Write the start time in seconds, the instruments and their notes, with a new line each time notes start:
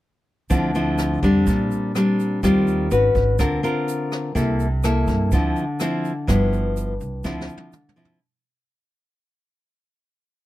0.50 upright bass D2, nylon-string guitar D3 F3 C4 E4, kick, closed hi-hat, shaker
0.74 nylon-string guitar F3 C4 E4, closed hi-hat, shaker
0.98 cross-stick, closed hi-hat, shaker
1.23 upright bass F2, nylon-string guitar G3 C4 D4, kick, closed hi-hat, shaker
1.47 upright bass A#1, nylon-string guitar A#2, kick, closed hi-hat, shaker
1.71 closed hi-hat, shaker
1.95 nylon-string guitar G3 C4 D4, cross-stick, closed hi-hat, shaker
2.19 closed hi-hat, shaker
2.43 upright bass D#2, nylon-string guitar D#3 G3 C4 F4, kick, cross-stick, closed hi-hat, shaker
2.67 closed hi-hat, shaker
2.91 upright bass G#1, nylon-string guitar C#4 F#4 B4, closed hi-hat, shaker
3.15 upright bass G#1, kick, closed hi-hat, shaker
3.39 upright bass D2, nylon-string guitar D3 C4 F4 A#4, kick, cross-stick, closed hi-hat, shaker
3.63 nylon-string guitar C4 F4 A#4, closed hi-hat, shaker
3.88 closed hi-hat, shaker
4.12 cross-stick, closed hi-hat, shaker
4.35 upright bass C2, nylon-string guitar C3 A#3 E4 A4, kick, closed hi-hat, shaker
4.60 closed hi-hat, shaker
4.83 nylon-string guitar A#3 E4 A4, cross-stick, closed hi-hat, shaker
5.07 upright bass G2, kick, closed hi-hat, shaker
5.32 upright bass D2, nylon-string guitar D3 F3 C4 E4, kick, closed hi-hat, shaker
5.56 closed hi-hat, shaker
5.80 nylon-string guitar F3 C4 E4, cross-stick, closed hi-hat, shaker
6.05 closed hi-hat, shaker
6.27 upright bass G1, nylon-string guitar G2 F3 B3 E4, kick, cross-stick, closed hi-hat, shaker
6.52 closed hi-hat, shaker
6.77 closed hi-hat, shaker
7.01 upright bass C2, closed hi-hat, shaker
7.24 upright bass D2, nylon-string guitar D3 F3 C4 E4, kick, snare, shaker
7.41 snare
7.49 shaker
7.57 high tom
7.73 mid tom, shaker
7.89 mid tom
7.96 nylon-string guitar F3 C4 E4, shaker
8.05 floor tom